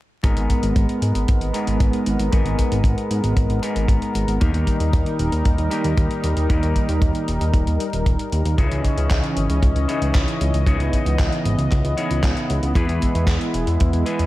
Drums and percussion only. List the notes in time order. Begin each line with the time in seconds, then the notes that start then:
0.24 kick, closed hi-hat
0.37 closed hi-hat
0.50 kick, closed hi-hat
0.63 closed hi-hat
0.76 kick, closed hi-hat
0.89 closed hi-hat
1.02 closed hi-hat
1.15 closed hi-hat
1.28 kick, closed hi-hat
1.41 closed hi-hat
1.54 closed hi-hat
1.67 closed hi-hat
1.80 kick, closed hi-hat
1.93 closed hi-hat
2.06 closed hi-hat
2.19 closed hi-hat
2.33 kick, closed hi-hat
2.46 closed hi-hat
2.59 kick, closed hi-hat
2.72 closed hi-hat
2.84 kick, closed hi-hat
2.98 closed hi-hat
3.11 closed hi-hat
3.24 closed hi-hat
3.37 kick, closed hi-hat
3.50 closed hi-hat
3.63 closed hi-hat
3.76 closed hi-hat
3.88 kick, closed hi-hat
4.02 closed hi-hat
4.15 closed hi-hat
4.28 closed hi-hat
4.41 kick, closed hi-hat
4.54 closed hi-hat
4.67 kick, closed hi-hat
4.80 closed hi-hat
4.93 kick, closed hi-hat
5.06 closed hi-hat
5.19 closed hi-hat
5.32 closed hi-hat
5.45 kick, closed hi-hat
5.58 closed hi-hat
5.71 closed hi-hat
5.84 closed hi-hat
5.98 kick, closed hi-hat
6.11 closed hi-hat
6.24 closed hi-hat
6.37 closed hi-hat
6.50 kick, closed hi-hat
6.63 closed hi-hat
6.76 kick, closed hi-hat
6.89 closed hi-hat
7.02 kick, closed hi-hat
7.15 closed hi-hat
7.28 closed hi-hat
7.41 closed hi-hat
7.54 kick, closed hi-hat
7.67 closed hi-hat
7.80 closed hi-hat
7.93 closed hi-hat
8.06 kick, closed hi-hat
8.19 closed hi-hat
8.32 closed hi-hat
8.45 closed hi-hat
8.58 kick, closed hi-hat
8.72 closed hi-hat
8.84 kick, closed hi-hat
8.98 closed hi-hat
9.11 kick, clap, closed hi-hat
9.24 closed hi-hat
9.37 closed hi-hat
9.50 closed hi-hat
9.63 kick, closed hi-hat
9.76 closed hi-hat
9.89 closed hi-hat
10.02 closed hi-hat
10.15 kick, clap, closed hi-hat
10.28 closed hi-hat
10.41 closed hi-hat
10.54 closed hi-hat
10.67 kick, closed hi-hat
10.80 closed hi-hat
10.93 kick, closed hi-hat
11.06 closed hi-hat
11.19 kick, clap, closed hi-hat
11.32 closed hi-hat
11.45 closed hi-hat
11.59 closed hi-hat
11.72 kick, clap, closed hi-hat
11.85 closed hi-hat
11.98 closed hi-hat
12.11 closed hi-hat
12.23 kick, clap, closed hi-hat
12.37 closed hi-hat
12.50 closed hi-hat
12.63 closed hi-hat
12.75 kick, closed hi-hat
12.89 closed hi-hat
13.02 kick, closed hi-hat
13.15 closed hi-hat
13.27 kick, clap, closed hi-hat
13.41 closed hi-hat
13.54 closed hi-hat
13.67 closed hi-hat
13.80 kick, closed hi-hat
13.93 closed hi-hat
14.06 closed hi-hat
14.19 closed hi-hat